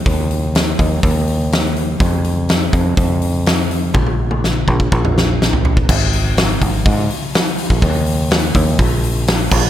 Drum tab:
CC |----------------|----------------|----------------|x---------------|
HH |o-o-o-o-o-o-o-o-|o-o-o-o-o-o-o-o-|----------------|--o-o-o-o-o-o-o-|
SD |----o-------o---|----o-------o---|----o-----o-o---|----o-------o---|
T1 |----------------|----------------|oo-o------------|----------------|
T2 |----------------|----------------|---------o------|----------------|
FT |----------------|----------------|-------------oo-|----------------|
BD |o-----o-o-------|o-----o-o-------|o-----ooo------o|o-----o-o------o|

CC |--------------x-|
HH |o-o-o-o-o-o-o---|
SD |----o-------o---|
T1 |----------------|
T2 |----------------|
FT |----------------|
BD |o-----o-o-----o-|